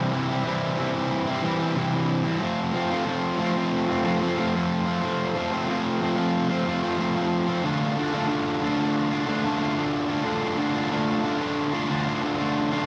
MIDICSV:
0, 0, Header, 1, 2, 480
1, 0, Start_track
1, 0, Tempo, 653595
1, 1777, Time_signature, 4, 2, 24, 8
1, 9444, End_track
2, 0, Start_track
2, 0, Title_t, "Distorted electric guitar"
2, 0, Program_c, 0, 30
2, 0, Note_on_c, 0, 48, 104
2, 0, Note_on_c, 0, 52, 106
2, 0, Note_on_c, 0, 55, 107
2, 0, Note_on_c, 0, 60, 102
2, 0, Note_on_c, 0, 64, 118
2, 84, Note_off_c, 0, 52, 0
2, 87, Note_on_c, 0, 52, 65
2, 94, Note_off_c, 0, 55, 0
2, 97, Note_on_c, 0, 55, 72
2, 100, Note_off_c, 0, 60, 0
2, 103, Note_on_c, 0, 60, 78
2, 109, Note_off_c, 0, 64, 0
2, 112, Note_on_c, 0, 64, 67
2, 206, Note_off_c, 0, 64, 0
2, 209, Note_on_c, 0, 64, 90
2, 221, Note_off_c, 0, 60, 0
2, 224, Note_on_c, 0, 60, 80
2, 231, Note_off_c, 0, 55, 0
2, 234, Note_on_c, 0, 55, 73
2, 316, Note_off_c, 0, 48, 0
2, 325, Note_on_c, 0, 48, 102
2, 332, Note_off_c, 0, 52, 0
2, 335, Note_on_c, 0, 52, 102
2, 338, Note_off_c, 0, 55, 0
2, 341, Note_on_c, 0, 55, 123
2, 343, Note_off_c, 0, 60, 0
2, 346, Note_on_c, 0, 60, 118
2, 349, Note_off_c, 0, 64, 0
2, 352, Note_on_c, 0, 64, 120
2, 562, Note_off_c, 0, 52, 0
2, 565, Note_on_c, 0, 52, 77
2, 572, Note_off_c, 0, 55, 0
2, 575, Note_on_c, 0, 55, 83
2, 583, Note_off_c, 0, 60, 0
2, 585, Note_on_c, 0, 60, 89
2, 588, Note_off_c, 0, 64, 0
2, 591, Note_on_c, 0, 64, 76
2, 682, Note_off_c, 0, 64, 0
2, 685, Note_on_c, 0, 64, 68
2, 695, Note_off_c, 0, 60, 0
2, 698, Note_on_c, 0, 60, 57
2, 705, Note_off_c, 0, 55, 0
2, 708, Note_on_c, 0, 55, 65
2, 811, Note_off_c, 0, 48, 0
2, 923, Note_off_c, 0, 64, 0
2, 926, Note_on_c, 0, 64, 75
2, 939, Note_off_c, 0, 60, 0
2, 942, Note_on_c, 0, 60, 66
2, 948, Note_off_c, 0, 55, 0
2, 951, Note_on_c, 0, 55, 52
2, 1042, Note_off_c, 0, 52, 0
2, 1045, Note_on_c, 0, 52, 89
2, 1053, Note_off_c, 0, 55, 0
2, 1056, Note_on_c, 0, 55, 91
2, 1061, Note_off_c, 0, 60, 0
2, 1064, Note_on_c, 0, 60, 97
2, 1065, Note_off_c, 0, 64, 0
2, 1068, Note_on_c, 0, 64, 99
2, 1165, Note_off_c, 0, 64, 0
2, 1168, Note_on_c, 0, 64, 70
2, 1179, Note_off_c, 0, 60, 0
2, 1182, Note_on_c, 0, 60, 70
2, 1191, Note_off_c, 0, 55, 0
2, 1194, Note_on_c, 0, 55, 62
2, 1292, Note_on_c, 0, 48, 100
2, 1296, Note_off_c, 0, 52, 0
2, 1299, Note_on_c, 0, 52, 113
2, 1301, Note_off_c, 0, 55, 0
2, 1304, Note_on_c, 0, 55, 99
2, 1305, Note_off_c, 0, 60, 0
2, 1308, Note_on_c, 0, 60, 118
2, 1314, Note_off_c, 0, 64, 0
2, 1316, Note_on_c, 0, 64, 122
2, 1410, Note_off_c, 0, 64, 0
2, 1412, Note_on_c, 0, 64, 75
2, 1425, Note_off_c, 0, 60, 0
2, 1428, Note_on_c, 0, 60, 68
2, 1434, Note_off_c, 0, 55, 0
2, 1437, Note_on_c, 0, 55, 58
2, 1640, Note_off_c, 0, 64, 0
2, 1643, Note_on_c, 0, 64, 81
2, 1654, Note_off_c, 0, 48, 0
2, 1655, Note_off_c, 0, 60, 0
2, 1658, Note_on_c, 0, 60, 80
2, 1666, Note_off_c, 0, 55, 0
2, 1669, Note_on_c, 0, 55, 73
2, 1767, Note_off_c, 0, 52, 0
2, 1770, Note_on_c, 0, 53, 99
2, 1775, Note_off_c, 0, 55, 0
2, 1778, Note_on_c, 0, 57, 98
2, 1783, Note_off_c, 0, 60, 0
2, 1786, Note_on_c, 0, 60, 104
2, 1788, Note_off_c, 0, 64, 0
2, 1791, Note_on_c, 0, 65, 104
2, 2004, Note_off_c, 0, 53, 0
2, 2007, Note_on_c, 0, 53, 70
2, 2015, Note_off_c, 0, 57, 0
2, 2018, Note_on_c, 0, 57, 66
2, 2024, Note_off_c, 0, 60, 0
2, 2027, Note_on_c, 0, 60, 71
2, 2031, Note_off_c, 0, 65, 0
2, 2034, Note_on_c, 0, 65, 84
2, 2126, Note_off_c, 0, 65, 0
2, 2129, Note_on_c, 0, 65, 83
2, 2138, Note_off_c, 0, 60, 0
2, 2140, Note_on_c, 0, 60, 67
2, 2148, Note_off_c, 0, 57, 0
2, 2151, Note_on_c, 0, 57, 64
2, 2242, Note_off_c, 0, 53, 0
2, 2245, Note_on_c, 0, 53, 104
2, 2250, Note_off_c, 0, 57, 0
2, 2253, Note_on_c, 0, 57, 121
2, 2260, Note_off_c, 0, 60, 0
2, 2263, Note_on_c, 0, 60, 112
2, 2268, Note_off_c, 0, 65, 0
2, 2271, Note_on_c, 0, 65, 123
2, 2480, Note_off_c, 0, 53, 0
2, 2483, Note_on_c, 0, 53, 72
2, 2492, Note_off_c, 0, 57, 0
2, 2495, Note_on_c, 0, 57, 82
2, 2500, Note_off_c, 0, 60, 0
2, 2503, Note_on_c, 0, 60, 90
2, 2506, Note_off_c, 0, 65, 0
2, 2509, Note_on_c, 0, 65, 90
2, 2603, Note_off_c, 0, 65, 0
2, 2606, Note_on_c, 0, 65, 65
2, 2619, Note_off_c, 0, 60, 0
2, 2622, Note_on_c, 0, 60, 71
2, 2629, Note_off_c, 0, 57, 0
2, 2632, Note_on_c, 0, 57, 57
2, 2841, Note_off_c, 0, 65, 0
2, 2844, Note_on_c, 0, 65, 69
2, 2856, Note_off_c, 0, 60, 0
2, 2859, Note_on_c, 0, 60, 71
2, 2868, Note_off_c, 0, 57, 0
2, 2871, Note_on_c, 0, 57, 58
2, 2964, Note_off_c, 0, 53, 0
2, 2967, Note_on_c, 0, 53, 81
2, 2975, Note_off_c, 0, 57, 0
2, 2978, Note_on_c, 0, 57, 89
2, 2981, Note_off_c, 0, 60, 0
2, 2984, Note_on_c, 0, 60, 103
2, 2987, Note_off_c, 0, 65, 0
2, 2990, Note_on_c, 0, 65, 99
2, 3086, Note_off_c, 0, 65, 0
2, 3089, Note_on_c, 0, 65, 78
2, 3097, Note_off_c, 0, 60, 0
2, 3100, Note_on_c, 0, 60, 74
2, 3111, Note_off_c, 0, 57, 0
2, 3114, Note_on_c, 0, 57, 61
2, 3209, Note_off_c, 0, 53, 0
2, 3212, Note_on_c, 0, 53, 117
2, 3216, Note_off_c, 0, 57, 0
2, 3219, Note_on_c, 0, 57, 114
2, 3225, Note_off_c, 0, 60, 0
2, 3228, Note_on_c, 0, 60, 107
2, 3233, Note_off_c, 0, 65, 0
2, 3236, Note_on_c, 0, 65, 116
2, 3327, Note_off_c, 0, 65, 0
2, 3330, Note_on_c, 0, 65, 78
2, 3343, Note_off_c, 0, 60, 0
2, 3346, Note_on_c, 0, 60, 68
2, 3354, Note_off_c, 0, 57, 0
2, 3357, Note_on_c, 0, 57, 57
2, 3566, Note_off_c, 0, 65, 0
2, 3569, Note_on_c, 0, 65, 83
2, 3582, Note_off_c, 0, 60, 0
2, 3585, Note_on_c, 0, 60, 78
2, 3592, Note_off_c, 0, 57, 0
2, 3595, Note_on_c, 0, 57, 62
2, 3686, Note_off_c, 0, 53, 0
2, 3689, Note_on_c, 0, 53, 91
2, 3699, Note_off_c, 0, 57, 0
2, 3702, Note_on_c, 0, 57, 94
2, 3705, Note_off_c, 0, 60, 0
2, 3708, Note_on_c, 0, 60, 93
2, 3712, Note_off_c, 0, 65, 0
2, 3715, Note_on_c, 0, 65, 97
2, 3927, Note_off_c, 0, 53, 0
2, 3930, Note_on_c, 0, 53, 77
2, 3938, Note_off_c, 0, 57, 0
2, 3941, Note_on_c, 0, 57, 66
2, 3947, Note_off_c, 0, 60, 0
2, 3950, Note_on_c, 0, 60, 66
2, 3952, Note_off_c, 0, 65, 0
2, 3955, Note_on_c, 0, 65, 82
2, 4047, Note_off_c, 0, 65, 0
2, 4049, Note_on_c, 0, 65, 71
2, 4062, Note_off_c, 0, 60, 0
2, 4065, Note_on_c, 0, 60, 68
2, 4071, Note_off_c, 0, 57, 0
2, 4074, Note_on_c, 0, 57, 75
2, 4164, Note_off_c, 0, 53, 0
2, 4167, Note_on_c, 0, 53, 111
2, 4174, Note_off_c, 0, 57, 0
2, 4177, Note_on_c, 0, 57, 108
2, 4183, Note_off_c, 0, 60, 0
2, 4186, Note_on_c, 0, 60, 123
2, 4190, Note_off_c, 0, 65, 0
2, 4193, Note_on_c, 0, 65, 127
2, 4409, Note_off_c, 0, 53, 0
2, 4411, Note_on_c, 0, 53, 77
2, 4417, Note_off_c, 0, 57, 0
2, 4420, Note_on_c, 0, 57, 84
2, 4426, Note_off_c, 0, 60, 0
2, 4429, Note_on_c, 0, 60, 76
2, 4435, Note_off_c, 0, 65, 0
2, 4438, Note_on_c, 0, 65, 81
2, 4526, Note_off_c, 0, 65, 0
2, 4529, Note_on_c, 0, 65, 72
2, 4539, Note_off_c, 0, 60, 0
2, 4541, Note_on_c, 0, 60, 73
2, 4550, Note_off_c, 0, 57, 0
2, 4553, Note_on_c, 0, 57, 61
2, 4767, Note_off_c, 0, 65, 0
2, 4770, Note_on_c, 0, 65, 69
2, 4782, Note_off_c, 0, 60, 0
2, 4785, Note_on_c, 0, 60, 78
2, 4793, Note_off_c, 0, 57, 0
2, 4796, Note_on_c, 0, 57, 60
2, 4888, Note_off_c, 0, 53, 0
2, 4891, Note_on_c, 0, 53, 90
2, 4896, Note_off_c, 0, 57, 0
2, 4899, Note_on_c, 0, 57, 95
2, 4905, Note_off_c, 0, 60, 0
2, 4908, Note_on_c, 0, 60, 86
2, 4911, Note_off_c, 0, 65, 0
2, 4914, Note_on_c, 0, 65, 97
2, 5007, Note_off_c, 0, 65, 0
2, 5010, Note_on_c, 0, 65, 81
2, 5019, Note_off_c, 0, 60, 0
2, 5022, Note_on_c, 0, 60, 66
2, 5031, Note_off_c, 0, 57, 0
2, 5034, Note_on_c, 0, 57, 62
2, 5125, Note_off_c, 0, 53, 0
2, 5128, Note_on_c, 0, 53, 103
2, 5137, Note_off_c, 0, 57, 0
2, 5140, Note_on_c, 0, 57, 116
2, 5145, Note_off_c, 0, 60, 0
2, 5148, Note_on_c, 0, 60, 127
2, 5152, Note_off_c, 0, 65, 0
2, 5155, Note_on_c, 0, 65, 127
2, 5242, Note_off_c, 0, 65, 0
2, 5245, Note_on_c, 0, 65, 78
2, 5254, Note_off_c, 0, 60, 0
2, 5257, Note_on_c, 0, 60, 72
2, 5269, Note_off_c, 0, 57, 0
2, 5272, Note_on_c, 0, 57, 71
2, 5482, Note_off_c, 0, 65, 0
2, 5485, Note_on_c, 0, 65, 96
2, 5497, Note_off_c, 0, 60, 0
2, 5500, Note_on_c, 0, 60, 86
2, 5507, Note_off_c, 0, 57, 0
2, 5509, Note_on_c, 0, 57, 71
2, 5605, Note_off_c, 0, 53, 0
2, 5608, Note_on_c, 0, 50, 94
2, 5612, Note_off_c, 0, 57, 0
2, 5615, Note_on_c, 0, 57, 96
2, 5622, Note_off_c, 0, 60, 0
2, 5625, Note_on_c, 0, 62, 108
2, 5631, Note_off_c, 0, 65, 0
2, 5634, Note_on_c, 0, 65, 114
2, 5846, Note_off_c, 0, 50, 0
2, 5849, Note_on_c, 0, 50, 86
2, 5854, Note_off_c, 0, 57, 0
2, 5857, Note_on_c, 0, 57, 73
2, 5864, Note_off_c, 0, 62, 0
2, 5867, Note_on_c, 0, 62, 88
2, 5872, Note_off_c, 0, 65, 0
2, 5874, Note_on_c, 0, 65, 80
2, 5965, Note_off_c, 0, 65, 0
2, 5968, Note_on_c, 0, 65, 83
2, 5978, Note_off_c, 0, 62, 0
2, 5981, Note_on_c, 0, 62, 78
2, 5987, Note_off_c, 0, 57, 0
2, 5990, Note_on_c, 0, 57, 71
2, 6075, Note_off_c, 0, 50, 0
2, 6078, Note_on_c, 0, 50, 117
2, 6087, Note_off_c, 0, 57, 0
2, 6090, Note_on_c, 0, 57, 120
2, 6095, Note_off_c, 0, 62, 0
2, 6098, Note_on_c, 0, 62, 119
2, 6102, Note_off_c, 0, 65, 0
2, 6105, Note_on_c, 0, 65, 115
2, 6328, Note_off_c, 0, 50, 0
2, 6331, Note_on_c, 0, 50, 69
2, 6336, Note_off_c, 0, 57, 0
2, 6339, Note_on_c, 0, 57, 81
2, 6343, Note_off_c, 0, 62, 0
2, 6346, Note_on_c, 0, 62, 82
2, 6350, Note_off_c, 0, 65, 0
2, 6353, Note_on_c, 0, 65, 86
2, 6442, Note_off_c, 0, 65, 0
2, 6445, Note_on_c, 0, 65, 69
2, 6455, Note_off_c, 0, 62, 0
2, 6458, Note_on_c, 0, 62, 66
2, 6463, Note_off_c, 0, 57, 0
2, 6466, Note_on_c, 0, 57, 65
2, 6682, Note_off_c, 0, 65, 0
2, 6685, Note_on_c, 0, 65, 82
2, 6696, Note_off_c, 0, 62, 0
2, 6699, Note_on_c, 0, 62, 70
2, 6707, Note_off_c, 0, 57, 0
2, 6710, Note_on_c, 0, 57, 54
2, 6800, Note_off_c, 0, 50, 0
2, 6803, Note_on_c, 0, 50, 88
2, 6811, Note_off_c, 0, 57, 0
2, 6814, Note_on_c, 0, 57, 92
2, 6817, Note_off_c, 0, 62, 0
2, 6820, Note_on_c, 0, 62, 101
2, 6823, Note_off_c, 0, 65, 0
2, 6826, Note_on_c, 0, 65, 100
2, 6920, Note_off_c, 0, 65, 0
2, 6923, Note_on_c, 0, 65, 81
2, 6936, Note_off_c, 0, 62, 0
2, 6939, Note_on_c, 0, 62, 65
2, 6947, Note_off_c, 0, 57, 0
2, 6950, Note_on_c, 0, 57, 68
2, 7041, Note_off_c, 0, 50, 0
2, 7044, Note_on_c, 0, 50, 99
2, 7050, Note_off_c, 0, 57, 0
2, 7053, Note_on_c, 0, 57, 117
2, 7059, Note_off_c, 0, 62, 0
2, 7062, Note_on_c, 0, 62, 109
2, 7067, Note_off_c, 0, 65, 0
2, 7070, Note_on_c, 0, 65, 127
2, 7162, Note_off_c, 0, 65, 0
2, 7165, Note_on_c, 0, 65, 80
2, 7176, Note_off_c, 0, 62, 0
2, 7179, Note_on_c, 0, 62, 77
2, 7186, Note_off_c, 0, 57, 0
2, 7188, Note_on_c, 0, 57, 65
2, 7394, Note_off_c, 0, 65, 0
2, 7403, Note_on_c, 0, 65, 90
2, 7406, Note_off_c, 0, 62, 0
2, 7415, Note_on_c, 0, 62, 81
2, 7418, Note_off_c, 0, 57, 0
2, 7426, Note_on_c, 0, 57, 71
2, 7517, Note_off_c, 0, 50, 0
2, 7520, Note_on_c, 0, 50, 101
2, 7521, Note_off_c, 0, 57, 0
2, 7530, Note_off_c, 0, 62, 0
2, 7530, Note_on_c, 0, 57, 93
2, 7537, Note_off_c, 0, 65, 0
2, 7538, Note_on_c, 0, 62, 106
2, 7546, Note_on_c, 0, 65, 108
2, 7749, Note_off_c, 0, 50, 0
2, 7757, Note_off_c, 0, 57, 0
2, 7758, Note_on_c, 0, 50, 64
2, 7764, Note_off_c, 0, 62, 0
2, 7766, Note_on_c, 0, 57, 73
2, 7773, Note_on_c, 0, 62, 76
2, 7774, Note_off_c, 0, 65, 0
2, 7783, Note_on_c, 0, 65, 77
2, 7872, Note_off_c, 0, 65, 0
2, 7881, Note_on_c, 0, 65, 74
2, 7886, Note_off_c, 0, 62, 0
2, 7895, Note_on_c, 0, 62, 68
2, 7898, Note_off_c, 0, 57, 0
2, 7906, Note_on_c, 0, 57, 67
2, 7994, Note_off_c, 0, 50, 0
2, 8003, Note_on_c, 0, 50, 114
2, 8006, Note_off_c, 0, 57, 0
2, 8013, Note_off_c, 0, 62, 0
2, 8015, Note_on_c, 0, 57, 116
2, 8020, Note_off_c, 0, 65, 0
2, 8022, Note_on_c, 0, 62, 119
2, 8029, Note_on_c, 0, 65, 118
2, 8236, Note_off_c, 0, 50, 0
2, 8245, Note_on_c, 0, 50, 76
2, 8246, Note_off_c, 0, 57, 0
2, 8254, Note_off_c, 0, 62, 0
2, 8255, Note_on_c, 0, 57, 70
2, 8260, Note_off_c, 0, 65, 0
2, 8263, Note_on_c, 0, 62, 81
2, 8269, Note_on_c, 0, 65, 81
2, 8352, Note_off_c, 0, 65, 0
2, 8361, Note_on_c, 0, 65, 72
2, 8370, Note_off_c, 0, 62, 0
2, 8379, Note_on_c, 0, 62, 63
2, 8381, Note_off_c, 0, 57, 0
2, 8390, Note_on_c, 0, 57, 62
2, 8596, Note_off_c, 0, 65, 0
2, 8605, Note_on_c, 0, 65, 74
2, 8609, Note_off_c, 0, 50, 0
2, 8610, Note_off_c, 0, 62, 0
2, 8619, Note_on_c, 0, 62, 65
2, 8621, Note_off_c, 0, 57, 0
2, 8630, Note_on_c, 0, 57, 58
2, 8730, Note_on_c, 0, 50, 73
2, 8731, Note_off_c, 0, 57, 0
2, 8737, Note_off_c, 0, 62, 0
2, 8740, Note_on_c, 0, 57, 102
2, 8745, Note_off_c, 0, 65, 0
2, 8746, Note_on_c, 0, 62, 99
2, 8754, Note_on_c, 0, 65, 95
2, 8834, Note_off_c, 0, 65, 0
2, 8843, Note_on_c, 0, 65, 78
2, 8847, Note_off_c, 0, 62, 0
2, 8856, Note_on_c, 0, 62, 67
2, 8858, Note_off_c, 0, 57, 0
2, 8867, Note_on_c, 0, 57, 65
2, 8959, Note_off_c, 0, 50, 0
2, 8967, Note_on_c, 0, 50, 110
2, 8968, Note_off_c, 0, 57, 0
2, 8976, Note_off_c, 0, 62, 0
2, 8977, Note_on_c, 0, 57, 97
2, 8982, Note_off_c, 0, 65, 0
2, 8984, Note_on_c, 0, 62, 117
2, 8991, Note_on_c, 0, 65, 118
2, 9081, Note_off_c, 0, 65, 0
2, 9089, Note_on_c, 0, 65, 77
2, 9095, Note_off_c, 0, 62, 0
2, 9104, Note_on_c, 0, 62, 63
2, 9108, Note_off_c, 0, 57, 0
2, 9116, Note_on_c, 0, 57, 63
2, 9324, Note_off_c, 0, 65, 0
2, 9333, Note_off_c, 0, 50, 0
2, 9333, Note_on_c, 0, 65, 91
2, 9335, Note_off_c, 0, 62, 0
2, 9344, Note_on_c, 0, 62, 76
2, 9347, Note_off_c, 0, 57, 0
2, 9356, Note_on_c, 0, 57, 76
2, 9440, Note_off_c, 0, 65, 0
2, 9444, Note_off_c, 0, 57, 0
2, 9444, Note_off_c, 0, 62, 0
2, 9444, End_track
0, 0, End_of_file